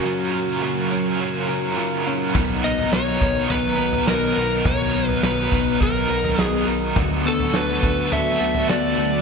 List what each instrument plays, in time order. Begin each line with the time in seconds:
Already playing: ambient pad A#2 C#3 F#3 A#4, clean electric guitar C#4 A#4, electric slide guitar F#4
0.03 overdriven electric guitar F#2 C#3 F#3 C#4 F4 A#4, ambient pad D#4
0.32 overdriven electric guitar C#4 F4 A#4
0.36 overdriven electric guitar F#3
0.61 overdriven electric guitar F#2 C#3 F#3 C#4 F4 A#4
0.91 overdriven electric guitar C#4 F4 A#4
0.95 overdriven electric guitar F#3
1.20 overdriven electric guitar F#3 C#4 F4 A#4
1.47 overdriven electric guitar C#4 F4 A#4
1.52 overdriven electric guitar F#3
1.76 overdriven electric guitar F#2 C#3 F#3 C#4 F4 A#4
2.04 overdriven electric guitar C#4 F4 A#4
2.08 overdriven electric guitar F#3
2.32 analog synth bass B1, overdriven electric guitar B2 F#3 B3 D#4 A#4, ambient pad D#3 F#3 B3 F#4, kick, floor tom, crash, tambourine
2.61 overdriven electric guitar D#4 A#4, electric slide guitar D#5, tambourine
2.67 overdriven electric guitar B3
2.79 floor tom
2.91 analog synth bass B1, overdriven electric guitar B2 F#3 B3 D#4 A#4, electric slide guitar C#5, snare, tambourine
3.20 analog synth bass B1, overdriven electric guitar D#4 A#4, kick, floor tom, tambourine
3.24 overdriven electric guitar B3
3.48 analog synth bass B1, overdriven electric guitar F#3 B3 D#4, electric slide guitar B4, floor tom
3.52 overdriven electric guitar A#4
3.78 analog synth bass B1, overdriven electric guitar D#4 A#4, tambourine
3.82 overdriven electric guitar B3
3.93 floor tom
4.06 analog synth bass B1, overdriven electric guitar B2 F#3 B3 D#4 A#4, electric slide guitar A#4, snare, tambourine
4.35 analog synth bass B1, overdriven electric guitar D#4 A#4, tambourine
4.39 overdriven electric guitar B3
4.64 analog synth bass B1, overdriven electric guitar B2 F#3 B3 D#4 A#4, electric slide guitar C#5, kick, floor tom, tambourine
4.93 overdriven electric guitar D#4 A#4, tambourine
4.98 overdriven electric guitar B3
5.08 electric slide guitar B4, floor tom
5.23 analog synth bass B1, overdriven electric guitar B2 F#3 B3 D#4 A#4, electric slide guitar B4, snare, tambourine
5.51 analog synth bass B1, overdriven electric guitar D#4 A#4, kick, floor tom, tambourine
5.56 overdriven electric guitar B3
5.81 analog synth bass B1, overdriven electric guitar F#3 B3 D#4, electric slide guitar A#4, kick, floor tom
5.85 overdriven electric guitar A#4
6.09 analog synth bass B1, clean electric guitar B3, overdriven electric guitar D#4 A#4, tambourine
6.14 overdriven electric guitar B3
6.24 floor tom
6.39 analog synth bass B1, overdriven electric guitar B2 F#3 B3 D#4 A#4, electric slide guitar G#4, snare, tambourine
6.68 analog synth bass B1, overdriven electric guitar D#4 A#4, tambourine
6.72 overdriven electric guitar B3
6.96 analog synth bass D2, overdriven electric guitar D3 F#3 B3 F#4 A4, ambient pad D3 A3, kick, floor tom, tambourine
7.23 overdriven electric guitar F#4 A4, tambourine
7.28 overdriven electric guitar B3, electric slide guitar A4
7.40 floor tom
7.53 analog synth bass D2, overdriven electric guitar D3 F#3 B3 F#4 A4, electric slide guitar B4, snare, tambourine
7.81 analog synth bass D2, overdriven electric guitar F#4 A4, kick, floor tom, tambourine
7.85 overdriven electric guitar B3
8.10 analog synth bass D2, overdriven electric guitar F#3 B3 F#4, electric slide guitar E5, floor tom
8.15 overdriven electric guitar A4
8.38 analog synth bass D2, overdriven electric guitar F#4 A4, tambourine
8.43 overdriven electric guitar B3
8.54 floor tom
8.67 analog synth bass D2, overdriven electric guitar D3 F#3 B3 F#4 A4, electric slide guitar D5, snare, tambourine
8.97 analog synth bass D2, overdriven electric guitar F#4 A4, tambourine
9.02 overdriven electric guitar B3